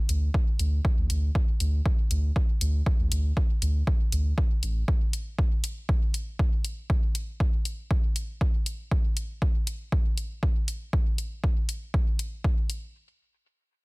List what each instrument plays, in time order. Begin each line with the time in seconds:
0.09 sub bass D2, closed hi-hat
0.34 kick
0.59 sub bass D2, closed hi-hat
0.85 kick
0.98 sub bass D2
1.10 sub bass D2, closed hi-hat
1.35 kick
1.60 sub bass D2, closed hi-hat
1.86 kick
2.11 sub bass D2, closed hi-hat
2.36 kick
2.61 sub bass D2, closed hi-hat
2.86 kick
3.00 sub bass D2
3.12 sub bass D2, closed hi-hat
3.37 kick
3.62 sub bass D2, closed hi-hat
3.87 kick
4.12 sub bass D2, closed hi-hat
4.38 kick
4.63 sub bass A1, closed hi-hat
4.88 kick
5.13 closed hi-hat
5.39 kick
5.64 closed hi-hat
5.89 kick
6.14 closed hi-hat
6.39 kick
6.65 closed hi-hat
6.90 kick
7.15 closed hi-hat
7.40 kick
7.65 closed hi-hat
7.91 kick
8.16 closed hi-hat
8.41 kick
8.66 closed hi-hat
8.91 kick
9.17 closed hi-hat
9.42 kick
9.67 closed hi-hat
9.92 kick
10.18 closed hi-hat
10.43 kick
10.68 closed hi-hat
10.93 kick
11.18 closed hi-hat
11.44 kick
11.69 closed hi-hat
11.94 kick
12.19 closed hi-hat
12.44 kick
12.70 closed hi-hat